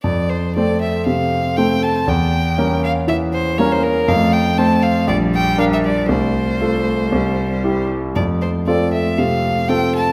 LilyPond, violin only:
\new Staff \with { instrumentName = "Violin" } { \time 4/4 \key f \major \tempo 4 = 118 d''8 c''8 d''8 e''8 f''4 g''8 a''8 | g''4. f''8 e''8 c''8 cis''16 c''16 bes'8 | f''8 g''8 a''8 f''8 d''8 g''8 f''16 e''16 d''8 | c''2.~ c''8 r8 |
d''8 c''8 d''8 e''8 f''4 g''8 a''8 | }